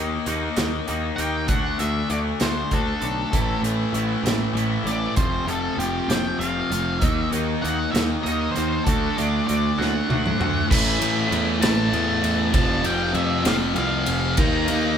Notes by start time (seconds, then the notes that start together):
Already playing: D#2 D#3 A#3 D#4 F#4
0.26 D#2 D#3 A#3 D#4 F#4, closed hi-hat
0.56 D#2 D#3 A#3 D#4 F#4, snare, closed hi-hat
0.87 D#2 D#3 A#3 D#4 F#4, closed hi-hat
1.16 D#2 D#3 A#3 D#4 F#4 G5, closed hi-hat
1.47 D2 D3 A3 D4 F#5, kick, closed hi-hat
1.51 F#4
1.79 D2 D3 A3 D4 F#4 E5, closed hi-hat
2.09 D2 D3 A3 D4 F#4 D5, closed hi-hat
2.40 D2 D3 A3 D4 F#4 C5, snare, closed hi-hat
2.71 D2 D3 A3 D4 F#4 A4, kick, closed hi-hat
3.01 B1 D3 A3 D4 F#4, closed hi-hat
3.31 A1 A2 E3 A3 C4, kick, closed hi-hat
3.35 E4
3.62 A1 A2 E3 A3 C4 E4, closed hi-hat
3.93 A1 A2 E3 A3 C4 E4, closed hi-hat
4.23 A1 A2 E3 A3 C4 E4, snare, closed hi-hat
4.54 A1 A2 E3 A3 C4, closed hi-hat
4.58 E4
4.84 A1 A2 E3 A3 C4 E4 D5, closed hi-hat
5.16 F1 F2 C3 F3 A3 C4 F4 C5, kick, closed hi-hat
5.45 F1 F2 C3 F3 C4 F4 A4, closed hi-hat
5.50 A3
5.77 F1 F2 C3 F3 A3 C4 F4 G4, closed hi-hat
6.08 F1 F2 C3 F3 A3 C4 F4 G5, snare, closed hi-hat
6.39 F1 F2 C3 F3 A3 C4 F4 F5, closed hi-hat
6.70 F1 F2 C3 F3 A3 C4 F4, closed hi-hat
6.99 D#2 D#3 A#3 D#4 E5, kick, closed hi-hat
7.04 F#4
7.31 D#2 D#3 A#3 D#4 F#4, closed hi-hat
7.62 D#2 D#3 A#3 D#4 F#4 F#5, closed hi-hat
7.92 D#2 D#3 A#3 D#4 F#4 E5, closed hi-hat
7.96 A#3, snare
8.22 D#2 D#3 A#3 D#4 D#5
8.26 F#4, closed hi-hat
8.52 D#3 C5
8.56 D#2 A#3 D#4 F#4, closed hi-hat
8.84 D2 D3 A3 A4, kick, closed hi-hat
8.88 D4 F#4
9.16 D2 D3 A3 D4 F#4 D5, closed hi-hat
9.47 D2 D3 A3 D4 F#4 D5, closed hi-hat
9.78 D2 D3 A3 D4 F#4 F#5, snare
10.08 D2 D3 A3 D4 F#5, high tom
10.12 F#4
10.26 mid tom
10.37 D2 D3 A3 D4 F#4, mid tom
10.43 A3
10.67 A1 A2 E3 A3 B5, kick
10.71 E3 A3, crash
10.98 A1 A2 E3 A3, ride
11.28 E2 A2 E3 A3
11.32 ride
11.59 A1 A2 E3 A3 A5, ride
11.64 A2, snare
11.90 E2 A2 E3 A3, ride
12.23 E2, ride
12.52 F1 F2 C3 F3 A5, kick, ride
12.82 F1 F2 C3 F3 G5, ride
13.12 F2 C3 F3 E5, ride
13.43 F1 F2 C3 F3 F5, snare, ride
13.50 F2
13.74 C2 F2 C3 F3 F5, ride
14.06 F1, ride
14.37 D#2 D#3 A#3 D#4 A#5, kick, ride
14.68 D#2 D#3 A#3 D#4, ride